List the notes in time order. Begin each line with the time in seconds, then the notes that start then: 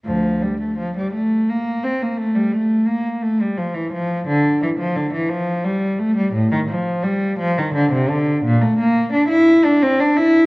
0.06 D2 F3
0.42 G3
0.61 A3
0.78 F3
0.97 G3
1.13 A3
1.49 A#3
1.83 C4
2.02 A#3
2.17 A3
2.35 G3
2.52 A3
2.87 A#3
3.22 A3
3.41 G3
3.57 F3
3.74 E3
3.92 F3
4.27 D3
4.62 E3
4.79 F3
4.95 D3
5.13 E3
5.29 F3
5.64 G3
5.99 A3
6.17 G3
6.33 A2
6.52 D#3
6.69 F3
7.04 G3
7.40 F3
7.58 D#3
7.75 D3
7.92 C3
8.09 D3
8.44 A#2
8.62 A3
8.78 A#3
9.12 D4
9.28 E4
9.64 D4
9.82 C4
10.00 D4
10.17 E4